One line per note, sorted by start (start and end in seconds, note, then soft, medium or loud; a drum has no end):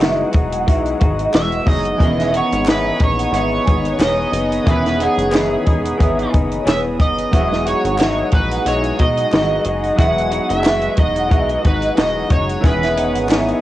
0.00 0.24 F#1 medium
0.00 0.33 E3 medium
0.00 1.62 F#3 medium
0.00 0.33 G#3 loud
0.00 1.62 B3 medium
0.00 0.31 D#4 loud
0.00 1.64 E4 medium
0.00 1.63 F#4 medium
0.00 0.30 F#4 medium
0.00 1.64 G#4 medium
0.00 1.95 G#4 medium
0.00 0.19 E5 medium
0.00 1.95 F#5 medium
0.00 12.58 D#6 medium
0.00 snare loud
0.00 clap medium
0.00 closed hi-hat loud
0.31 0.69 E1 medium
0.31 0.66 G#3 medium
0.31 0.67 D#4 medium
0.31 0.66 F#4 medium
0.31 kick loud
0.31 closed hi-hat medium
0.52 0.66 F#5 medium
0.52 closed hi-hat medium
0.66 0.94 B1 loud
0.66 1.00 E3 medium
0.66 1.01 G#3 medium
0.66 1.00 D#4 medium
0.66 0.99 F#4 medium
0.66 0.84 E5 medium
0.66 kick medium
0.66 closed hi-hat medium
0.85 closed hi-hat soft
1.00 1.28 G#1 medium
1.00 1.32 G#3 medium
1.00 1.34 D#4 medium
1.00 1.33 F#4 medium
1.00 kick medium
1.00 closed hi-hat medium
1.18 1.50 D#5 medium
1.18 closed hi-hat soft
1.33 1.61 E1 medium
1.33 1.67 E3 medium
1.33 1.67 G#3 medium
1.33 1.65 F#4 medium
1.33 1.68 E5 loud
1.33 snare loud
1.33 clap medium
1.33 closed hi-hat medium
1.52 closed hi-hat soft
1.66 1.94 F#1 medium
1.66 2.00 F#3 medium
1.66 1.99 G#3 medium
1.66 1.98 B3 soft
1.66 2.01 D#4 soft
1.66 2.01 E4 soft
1.66 2.00 F#4 medium
1.66 2.01 G#4 medium
1.66 2.37 D#5 loud
1.66 kick medium
1.66 open hi-hat medium
1.85 closed hi-hat soft
1.97 2.42 E1 loud
1.97 4.61 E3 medium
1.97 2.33 E3 medium
1.97 4.62 B3 medium
1.97 2.33 B3 medium
1.97 4.63 C#4 medium
1.97 2.31 G#4 medium
1.97 7.28 B4 medium
1.97 7.28 C#5 medium
1.97 2.32 E5 loud
1.97 4.63 C#6 medium
1.97 kick loud
1.97 closed hi-hat medium
2.02 4.62 D#3 medium
2.02 4.64 G#4 medium
2.20 snare soft
2.20 closed hi-hat soft
2.33 2.66 B3 soft
2.33 2.67 D#4 medium
2.33 2.67 G#4 medium
2.33 2.65 F#5 medium
2.33 closed hi-hat medium
2.37 2.69 C#5 loud
2.53 2.91 G#1 loud
2.53 closed hi-hat medium
2.66 3.00 E3 medium
2.66 3.00 B3 medium
2.66 2.99 D#4 medium
2.66 2.97 G#4 medium
2.66 3.00 B4 loud
2.66 2.85 E5 medium
2.66 snare loud
2.66 clap medium
2.66 closed hi-hat loud
2.98 3.27 A#1 medium
2.98 3.32 B3 soft
2.98 3.33 D#4 medium
2.98 3.33 G#4 medium
2.98 kick loud
2.98 closed hi-hat medium
3.04 3.36 C#5 loud
3.19 3.33 F#5 medium
3.19 closed hi-hat medium
3.32 3.59 G#1 loud
3.32 3.66 E3 medium
3.32 3.67 B3 medium
3.32 3.66 D#4 medium
3.32 3.65 G#4 medium
3.32 3.52 E5 medium
3.32 closed hi-hat medium
3.37 4.02 C#5 loud
3.66 3.94 G#1 medium
3.66 3.99 B3 soft
3.66 4.00 D#4 medium
3.66 3.99 G#4 medium
3.66 kick medium
3.66 closed hi-hat medium
3.85 4.17 C#5 medium
3.85 closed hi-hat soft
3.99 4.26 E1 loud
3.99 4.33 E3 medium
3.99 4.33 B3 medium
3.99 4.32 D#4 medium
3.99 4.31 G#4 medium
3.99 4.70 D#5 loud
3.99 snare loud
3.99 clap medium
3.99 closed hi-hat loud
4.32 4.59 F#1 medium
4.32 4.66 B3 soft
4.32 4.67 D#4 soft
4.32 4.66 G#4 medium
4.32 closed hi-hat medium
4.52 closed hi-hat soft
4.63 5.08 E1 loud
4.63 4.66 D#3 medium
4.63 7.29 D#3 medium
4.63 5.00 E3 medium
4.63 7.27 B3 medium
4.63 4.99 B3 medium
4.63 7.28 C#4 medium
4.63 4.97 G#4 medium
4.63 5.00 E5 medium
4.63 7.30 B5 medium
4.63 kick loud
4.63 closed hi-hat loud
4.68 7.30 E3 medium
4.68 7.29 G#4 medium
4.68 5.03 B4 medium
4.86 snare soft
4.86 closed hi-hat soft
4.99 5.30 B3 soft
4.99 5.31 D#4 medium
4.99 5.32 G#4 medium
4.99 6.30 G#4 medium
4.99 5.33 F#5 medium
4.99 closed hi-hat medium
5.17 5.56 F#1 medium
5.17 closed hi-hat medium
5.31 5.66 E3 medium
5.31 5.66 B3 medium
5.31 5.65 D#4 medium
5.31 5.64 G#4 medium
5.31 5.51 E5 medium
5.31 snare loud
5.31 clap medium
5.31 closed hi-hat loud
5.65 5.93 E1 medium
5.65 5.98 B3 medium
5.65 5.99 D#4 medium
5.65 5.99 G#4 medium
5.65 kick medium
5.65 closed hi-hat medium
5.85 6.01 F#5 medium
5.85 closed hi-hat medium
5.98 6.26 G#1 medium
5.98 6.32 E3 medium
5.98 6.32 B3 medium
5.98 6.32 D#4 medium
5.98 6.31 G#4 medium
5.98 kick loud
5.98 closed hi-hat medium
6.02 6.18 E5 medium
6.19 closed hi-hat soft
6.32 6.60 F#1 loud
6.32 6.64 B3 medium
6.32 6.66 D#4 medium
6.32 6.65 G#4 medium
6.32 kick medium
6.32 closed hi-hat medium
6.51 6.83 C#5 medium
6.51 closed hi-hat soft
6.65 7.01 E1 loud
6.65 6.99 E3 medium
6.65 6.99 B3 medium
6.65 6.98 G#4 medium
6.65 snare loud
6.65 clap medium
6.65 closed hi-hat loud
6.69 6.78 E5 medium
6.99 7.26 F#1 medium
6.99 7.33 B3 soft
6.99 7.33 D#4 soft
6.99 7.32 G#4 medium
6.99 7.69 D#5 medium
6.99 kick loud
6.99 closed hi-hat medium
7.18 closed hi-hat soft
7.31 7.74 E1 loud
7.31 7.66 E3 medium
7.31 9.93 F#3 medium
7.31 7.66 G#3 medium
7.31 9.94 B3 medium
7.31 9.95 E4 medium
7.31 9.95 F#4 medium
7.31 7.64 F#4 medium
7.31 12.59 G#4 medium
7.31 7.64 E5 loud
7.31 12.59 F#5 medium
7.31 kick loud
7.31 closed hi-hat loud
7.35 9.96 G#4 medium
7.52 snare soft
7.65 7.98 G#3 soft
7.65 7.99 D#4 soft
7.65 7.99 F#4 medium
7.65 8.35 C#5 medium
7.65 7.97 F#5 medium
7.65 closed hi-hat medium
7.84 8.23 G#1 loud
7.84 closed hi-hat medium
7.98 8.32 E3 medium
7.98 8.33 G#3 medium
7.98 8.32 D#4 medium
7.98 8.30 F#4 medium
7.98 8.16 E5 medium
7.98 snare loud
7.98 clap medium
7.98 closed hi-hat loud
8.31 8.59 A#1 loud
8.31 8.65 G#3 soft
8.31 8.66 D#4 soft
8.31 8.65 F#4 medium
8.31 8.64 B4 loud
8.31 kick medium
8.31 closed hi-hat medium
8.51 8.65 F#5 medium
8.51 closed hi-hat medium
8.65 8.92 B1 medium
8.65 8.99 E3 medium
8.65 8.99 G#3 medium
8.65 8.99 D#4 medium
8.65 8.98 F#4 medium
8.65 9.01 C#5 loud
8.65 8.83 E5 medium
8.65 closed hi-hat medium
8.84 closed hi-hat soft
8.99 9.25 B1 loud
8.99 9.32 G#3 soft
8.99 9.33 D#4 medium
8.99 9.32 F#4 medium
8.99 9.95 D#5 loud
8.99 kick medium
8.99 closed hi-hat medium
9.17 9.49 D#5 medium
9.17 closed hi-hat soft
9.32 9.59 G#1 loud
9.32 9.66 E3 medium
9.32 9.66 G#3 medium
9.32 9.66 D#4 medium
9.32 9.64 F#4 medium
9.32 snare loud
9.32 clap medium
9.32 closed hi-hat loud
9.64 9.92 F#1 medium
9.64 9.97 G#3 soft
9.64 9.99 D#4 medium
9.64 9.98 F#4 medium
9.64 closed hi-hat medium
9.83 closed hi-hat soft
9.96 10.40 E1 loud
9.96 10.31 E3 medium
9.96 12.58 F#3 medium
9.96 10.31 G#3 medium
9.96 12.59 B3 medium
9.96 12.60 E4 medium
9.96 12.60 F#4 medium
9.96 10.29 F#4 medium
9.96 10.29 E5 loud
9.96 kick loud
9.96 closed hi-hat loud
10.00 12.61 G#4 medium
10.00 10.47 F#5 loud
10.18 closed hi-hat soft
10.30 10.62 G#3 soft
10.30 10.64 D#4 soft
10.30 10.63 F#4 medium
10.30 10.65 F#5 medium
10.30 closed hi-hat medium
10.50 10.89 F#1 loud
10.50 10.99 E5 loud
10.50 closed hi-hat medium
10.63 10.97 E3 medium
10.63 10.97 G#3 medium
10.63 10.95 F#4 medium
10.63 10.82 E5 medium
10.63 snare loud
10.63 clap medium
10.63 closed hi-hat loud
10.82 closed hi-hat soft
10.96 11.33 E1 medium
10.96 11.28 G#3 soft
10.96 11.29 D#4 medium
10.96 11.30 F#4 medium
10.96 11.67 D#5 loud
10.96 kick medium
10.96 closed hi-hat medium
11.16 11.31 F#5 medium
11.16 closed hi-hat medium
11.29 11.58 B1 medium
11.29 11.63 E3 medium
11.29 11.63 G#3 medium
11.29 11.63 D#4 medium
11.29 11.61 F#4 medium
11.29 11.49 E5 medium
11.29 kick loud
11.29 closed hi-hat medium
11.49 closed hi-hat soft
11.62 11.91 G#1 medium
11.62 11.96 G#3 medium
11.62 11.96 D#4 medium
11.62 11.96 F#4 medium
11.62 kick medium
11.62 closed hi-hat medium
11.67 12.00 B4 medium
11.82 12.14 D#5 medium
11.82 closed hi-hat soft
11.96 12.24 E1 medium
11.96 12.30 E3 medium
11.96 12.30 G#3 medium
11.96 12.30 D#4 medium
11.96 12.29 F#4 medium
11.96 12.29 D#5 loud
11.96 snare loud
11.96 clap medium
11.96 closed hi-hat loud
12.30 12.57 F#1 medium
12.30 12.63 G#3 medium
12.30 12.64 D#4 medium
12.30 12.64 F#4 medium
12.30 12.66 C#5 medium
12.30 kick loud
12.30 closed hi-hat medium
12.49 closed hi-hat medium
12.61 13.16 E1 loud
12.61 13.61 D#3 medium
12.61 13.61 E3 medium
12.61 12.96 E3 medium
12.61 13.61 B3 medium
12.61 12.97 B3 medium
12.61 13.61 C#4 medium
12.61 12.94 G#4 medium
12.61 13.61 B4 medium
12.61 13.61 C#5 medium
12.61 13.61 C#6 medium
12.61 13.61 D#6 loud
12.61 kick loud
12.61 closed hi-hat loud
12.65 13.61 G#4 medium
12.65 13.27 B4 medium
12.65 12.96 E5 loud
12.83 snare soft
12.83 closed hi-hat soft
12.95 13.28 B3 soft
12.95 13.29 D#4 medium
12.95 13.29 G#4 medium
12.95 13.29 F#5 medium
12.95 closed hi-hat medium
13.15 13.53 G#1 medium
13.15 closed hi-hat medium
13.29 13.61 E3 medium
13.29 13.61 B3 medium
13.29 13.61 D#4 medium
13.29 13.61 G#4 medium
13.29 13.47 E5 medium
13.29 snare loud
13.29 clap medium
13.29 closed hi-hat loud
13.48 closed hi-hat soft